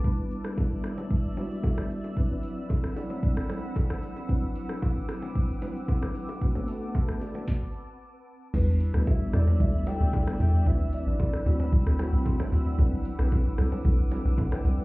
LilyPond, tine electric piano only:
\new Staff \with { instrumentName = "Tine electric piano" } { \time 4/4 \key e \minor \tempo 4 = 113 << { r1 | r1 | r1 | r8 <e'' a''>16 <b' fis''>16 <b' e''>8 <a' d''>16 <fis' b'>8 r4. r16 |
r1 | r2. <fis'' c'''>16 <e'' a''>16 <c'' fis''>16 <a' d''>16~ | <a' d''>16 r2 r8. <e'' a''>16 <d'' g''>16 <c'' fis''>16 <a' d''>16 | } \\ { <g b d' e' b'>8 r16 <g b d' e' b'>4. r16 <g b d' e' fis'>4~ <g b d' e' fis'>16 r16 | <fis c' d' e' b'>16 <fis c' d' e' b'>4 r16 <fis c' d' e' d''>4. r4 | <fis c' d' e' b'>8 r16 <fis c' d' e' b'>4. r16 <fis c' d' e' b'>4~ <fis c' d' e' b'>16 r16 | <a b d' fis' b'>16 <a b d' fis' a'>4 r2 r8. |
<g b d' e' b'>8 r16 <g b d' e' fis'>8 r16 <g b d' e' a'>8. r16 <g b d' e' a'>8 <g b d' e' d''>8. r16 | <fis c' d' e' b'>8 r16 <fis c' d' e' b'>8 r16 <fis c' d' e' fis'>8. r16 <fis c' d' e' fis'>8 r4 | <fis c' d' e' b'>8 r16 <fis c' d' e' b'>8 r16 <fis c' d' e' a'>8. r16 <fis c' d' e' b'>8 r4 | } >> }